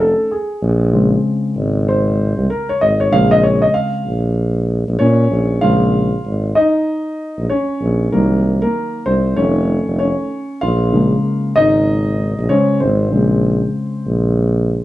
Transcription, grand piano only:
0.00 0.26 D#3 medium
0.00 0.27 A3 soft
0.00 0.27 C#4 medium
0.00 0.32 A4 medium
0.31 0.90 G#4 medium
0.93 3.10 C#3 medium
0.93 3.11 G#3 medium
0.93 3.11 C4 medium
1.88 2.46 C5 medium
2.50 2.69 A#4 medium
2.69 2.80 C#5 medium
2.81 3.00 D#5 medium
3.00 3.11 C#5 medium
3.11 4.01 C#3 soft
3.11 4.02 G#3 soft
3.11 4.02 C4 medium
3.11 3.31 F5 loud
3.31 3.44 D#5 loud
3.43 3.62 C#5 medium
3.62 3.75 D#5 medium
3.74 4.64 F5 medium
4.99 5.58 C#4 medium
4.99 5.63 C#5 loud
5.61 6.06 C#3 medium
5.61 6.06 G#3 soft
5.61 6.06 C4 medium
5.61 6.52 F4 medium
5.61 6.51 F5 loud
6.55 7.46 D#4 medium
6.55 7.45 D#5 medium
7.50 8.09 C#4 medium
7.50 8.14 C#5 medium
8.12 9.33 D#3 soft
8.12 9.33 F#3 soft
8.12 8.59 A#3 medium
8.12 8.60 A#4 medium
8.62 9.03 A#3 medium
8.62 9.03 A#4 medium
9.06 9.35 C4 medium
9.06 9.35 C5 medium
9.36 10.26 D#3 medium
9.36 10.27 A3 soft
9.36 9.99 C#4 medium
9.36 9.97 C#5 medium
9.99 10.58 C#4 medium
9.99 10.58 C#5 medium
10.61 11.52 F4 medium
10.61 11.58 F5 medium
10.93 12.48 C#3 medium
10.93 12.48 G#3 medium
10.93 13.39 A#3 medium
11.56 12.46 D#4 medium
11.56 12.52 D#5 loud
12.49 12.77 C#3 soft
12.49 12.78 G#3 soft
12.49 12.79 C#4 medium
12.49 12.78 C5 medium
12.49 12.78 C#5 medium
12.80 13.11 C4 medium
12.80 14.85 C5 medium
13.11 14.85 C#3 medium
13.11 14.85 G#3 soft
13.11 14.85 C4 medium

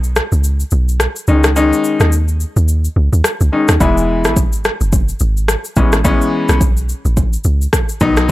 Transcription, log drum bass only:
0.00 0.21 B1 medium
0.32 0.64 C#2 medium
0.72 1.07 B1 medium
1.28 1.73 C#2 loud
2.00 2.45 D#2 medium
2.56 2.88 D#2 medium
2.96 3.09 C#2 loud
3.13 3.22 D#2 loud
3.41 3.50 C#2 loud
3.69 3.78 D#2 medium
3.81 4.26 E1 loud
4.25 4.70 G#1 medium
4.81 5.13 F#1 medium
5.21 5.56 G#1 loud
5.77 6.21 A1 medium
6.49 6.94 B1 medium
7.05 7.37 A1 medium
7.45 7.67 C#2 medium
8.01 8.31 B1 loud

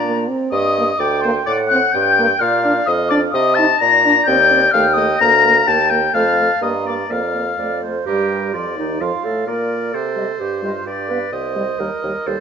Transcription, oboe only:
0.00 0.28 D5 medium
0.52 1.01 D#5 loud
1.00 1.23 D5 medium
1.23 1.34 C5 medium
1.46 1.57 D5 loud
1.71 1.96 F#5 medium
1.95 2.43 G5 medium
2.42 2.89 F5 loud
2.88 3.10 D#5 medium
3.10 3.21 D5 medium
3.35 3.58 D#5 loud
3.56 3.82 A5 loud
3.81 4.27 A#5 loud
4.28 4.73 G5 loud
4.74 4.84 F5 loud
4.97 5.20 D#5 loud
5.21 5.70 A#5 loud
5.68 5.92 A5 loud
5.90 6.13 G5 medium
6.14 6.61 F5 loud
6.62 6.88 D#5 medium
6.87 7.13 D5 medium
7.11 7.83 F5 medium
8.06 8.50 A#4 medium
8.54 9.03 D5 medium
9.01 9.47 F5 medium
9.48 9.96 D5 medium
9.95 10.87 C5 medium
10.87 11.32 D5 medium
11.33 12.28 D#5 medium
12.27 12.40 C5 medium

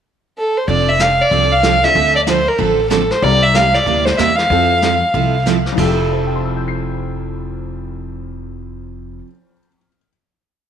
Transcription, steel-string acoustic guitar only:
0.69 0.89 F3 medium
0.69 0.89 C4 soft
0.69 0.89 D4 medium
0.69 0.89 A4 medium
1.00 1.11 F3 medium
1.00 1.11 C4 medium
1.00 1.11 D4 medium
1.00 1.12 A4 medium
1.32 1.52 F3 medium
1.32 1.53 C4 medium
1.32 1.53 D4 medium
1.32 1.53 A4 medium
1.64 1.75 F3 medium
1.64 1.75 C4 medium
1.64 1.75 D4 medium
1.64 1.75 A4 medium
1.95 2.16 D3 medium
1.95 2.16 F3 medium
1.95 2.16 C4 medium
1.95 2.16 D4 soft
1.95 2.16 A4 medium
2.27 2.38 D3 medium
2.27 2.38 F3 medium
2.27 2.38 C4 medium
2.27 2.39 D4 medium
2.27 2.39 A4 medium
2.58 2.79 D3 medium
2.58 2.79 F3 medium
2.58 2.79 C4 medium
2.58 2.80 D4 medium
2.58 2.80 A4 medium
2.90 3.02 D3 medium
2.90 3.02 F3 medium
2.90 3.02 C4 medium
2.90 3.02 D4 medium
2.90 3.02 A4 medium
3.22 3.43 C3 soft
3.22 3.43 G3 medium
3.22 3.44 A#3 medium
3.22 3.44 E4 medium
3.22 3.44 G4 medium
3.55 3.66 C3 medium
3.55 3.66 G3 medium
3.55 3.66 A#3 medium
3.55 3.66 E4 medium
3.55 3.66 G4 medium
3.87 4.07 C3 medium
3.87 4.07 G3 medium
3.87 4.08 A#3 medium
3.87 4.08 E4 medium
3.87 4.08 G4 medium
4.18 4.30 C3 medium
4.18 4.30 G3 medium
4.18 4.30 A#3 medium
4.18 4.30 E4 medium
4.18 4.30 G4 medium
4.51 4.71 F3 soft
4.51 4.72 C4 medium
4.51 4.72 E4 medium
4.51 4.72 A4 medium
4.82 4.93 F3 medium
4.82 4.94 C4 medium
4.82 4.94 E4 medium
4.82 4.94 A4 medium
5.14 5.35 F3 medium
5.14 5.35 C4 medium
5.14 5.35 E4 medium
5.14 5.35 A4 medium
5.46 5.57 F3 medium
5.46 5.58 C4 medium
5.46 5.58 E4 medium
5.46 5.58 A4 medium
5.77 9.27 F3 medium
5.77 9.28 C4 medium
5.77 9.29 E4 medium
5.77 9.30 A4 medium

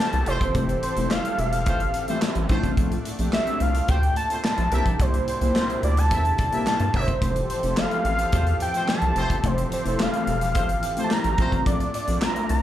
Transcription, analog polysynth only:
0.55 0.67 G3 medium
0.55 0.68 A3 medium
0.55 0.68 C4 medium
0.55 0.68 E4 medium
0.83 0.89 C4 medium
0.83 0.90 G4 medium
0.97 1.47 G3 medium
0.97 1.47 A3 medium
0.97 1.47 C4 medium
0.97 1.47 E4 medium
2.07 2.39 E3 loud
2.07 2.39 G3 loud
2.07 2.39 A3 medium
2.07 2.39 C4 medium
2.49 2.94 A3 loud
2.49 2.94 C4 loud
2.49 2.94 D4 medium
2.49 2.56 E4 medium
2.56 2.97 F4 loud
3.04 3.11 D4 medium
3.04 3.11 E4 loud
3.18 3.69 A3 medium
3.18 3.69 C4 medium
3.18 3.69 D4 medium
3.18 3.69 G4 medium
4.71 5.16 A#3 medium
4.71 5.16 D4 medium
4.71 5.16 E4 medium
4.71 5.16 G4 loud
5.27 5.33 E4 medium
5.27 5.34 G4 medium
5.41 5.91 A#3 medium
5.41 5.91 D4 medium
5.41 5.92 E4 medium
5.41 5.92 G4 medium
6.52 6.83 A#3 medium
6.52 6.84 D4 medium
6.52 6.84 E4 medium
6.52 6.84 G4 loud
7.21 7.34 A3 medium
7.21 7.34 C4 medium
7.21 7.34 E4 medium
7.21 7.34 G4 medium
7.49 7.55 E4 medium
7.49 7.56 G4 medium
7.62 8.13 A3 medium
7.62 8.13 C4 medium
7.62 8.13 E4 medium
7.62 8.13 A4 medium
9.43 9.56 A3 medium
9.43 9.56 C4 medium
9.43 9.56 E4 medium
9.43 9.56 G4 medium
9.70 9.77 E4 medium
9.84 10.35 A3 medium
9.84 10.35 C4 medium
9.84 10.35 E4 medium
9.84 10.35 A4 medium
10.96 11.28 A3 medium
10.96 11.28 C4 medium
10.96 11.28 E4 medium
10.96 11.28 G4 medium
11.38 11.82 A3 medium
11.38 11.82 C4 medium
11.38 11.83 D4 medium
11.38 11.83 F4 loud
11.93 12.00 D4 medium
11.93 12.00 F4 medium
12.07 12.58 A3 medium
12.07 12.58 C4 medium
12.07 12.58 D4 medium
12.07 12.58 F4 medium

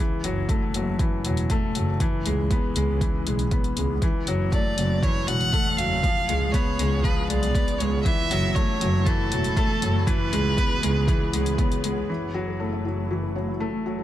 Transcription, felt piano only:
0.00 0.23 E3 medium
0.24 0.48 F#3 medium
0.49 0.73 A3 medium
0.75 0.99 F#3 medium
1.00 1.24 E3 medium
1.26 1.40 F#3 medium
1.51 1.75 A3 medium
1.75 1.90 F#3 medium
2.01 2.25 E3 medium
2.26 2.50 G#3 medium
2.52 2.75 B3 medium
2.76 3.00 G#3 medium
3.02 3.26 E3 medium
3.27 3.41 G#3 medium
3.52 3.76 B3 medium
3.78 3.92 G#3 medium
4.03 4.27 E3 medium
4.28 4.52 F#3 medium
4.53 4.77 A3 medium
4.78 5.02 F#3 medium
5.03 5.27 E3 medium
5.28 5.43 F#3 medium
5.53 5.77 A3 medium
5.79 5.93 F#3 medium
6.04 6.28 F3 medium
6.29 6.53 G#3 medium
6.54 6.78 B3 medium
6.80 7.04 G#3 medium
7.04 7.29 F3 medium
7.30 7.45 G#3 medium
7.55 7.79 B3 medium
7.81 7.95 G#3 medium
8.06 8.30 E3 medium
8.31 8.55 F#3 loud
8.56 8.80 A3 medium
8.81 9.05 F#3 medium
9.07 9.31 E3 medium
9.32 9.46 F#3 medium
9.57 9.81 A3 loud
9.82 9.97 F#3 medium
10.07 10.31 E3 medium
10.32 10.57 G#3 medium
10.58 10.82 B3 medium
10.83 11.07 G#3 loud
11.08 11.32 E3 medium
11.34 11.48 G#3 medium
11.59 11.83 B3 medium
11.84 11.98 G#3 medium
12.09 12.33 E3 medium
12.34 12.58 F#3 medium
12.60 12.84 A3 medium
12.85 13.09 F#3 medium
13.10 13.34 E3 medium
13.35 13.50 F#3 medium
13.60 13.84 A3 medium
13.86 14.00 F#3 medium

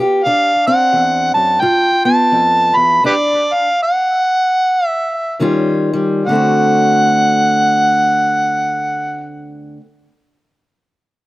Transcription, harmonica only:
0.24 0.63 F5 medium
0.66 1.31 F#5 medium
1.34 1.62 A5 medium
1.61 2.04 G5 loud
2.05 2.78 A5 medium
2.76 3.04 B5 loud
3.06 3.14 G4 medium
3.06 3.14 B4 medium
3.06 3.55 D5 medium
3.53 3.81 F5 medium
3.83 4.87 F#5 medium
4.87 5.37 E5 medium
6.27 9.27 F#5 loud

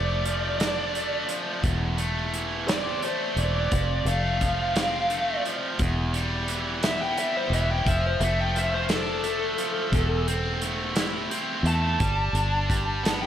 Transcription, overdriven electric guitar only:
0.00 0.23 F3 medium
0.00 0.93 A3 medium
0.24 1.25 F3 medium
0.58 1.63 D4 medium
0.93 1.97 A3 medium
1.27 1.63 F3 medium
1.63 3.36 E2 medium
1.98 3.01 A3 medium
2.33 3.37 E3 medium
2.67 3.71 C4 medium
3.03 3.72 A3 medium
3.39 3.73 E3 medium
3.72 5.45 F2 medium
4.07 5.09 A3 medium
4.41 5.45 F3 medium
4.77 5.80 C4 medium
5.10 5.79 A3 medium
5.46 5.80 F3 medium
5.80 7.52 E2 medium
6.13 7.17 G3 medium
6.49 7.52 E3 medium
6.83 7.86 B3 medium
7.18 7.87 G3 medium
7.53 7.87 E3 medium
7.87 8.53 F3 medium
8.21 9.22 A3 medium
8.55 9.56 F3 medium
8.89 9.93 D4 medium
9.23 9.93 A3 medium
9.58 9.93 F3 medium
9.91 11.65 E2 medium
10.27 11.29 C4 medium
10.61 11.64 A3 medium
10.96 12.00 E4 medium
11.30 12.00 C4 medium
11.65 12.00 A3 medium
12.00 12.68 G3 medium
12.35 13.26 D4 medium
12.70 13.26 G3 medium
13.03 13.26 B3 medium

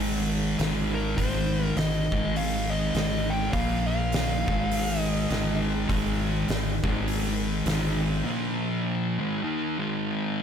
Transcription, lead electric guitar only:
0.95 1.19 A#4 medium
1.17 1.64 C5 medium
1.64 1.78 A#4 medium
1.78 2.38 D#5 medium
2.37 2.73 F5 medium
2.70 3.31 D#5 loud
3.30 3.53 G5 loud
3.53 3.86 F5 loud
3.87 5.01 F5 medium
5.01 5.61 D#5 medium

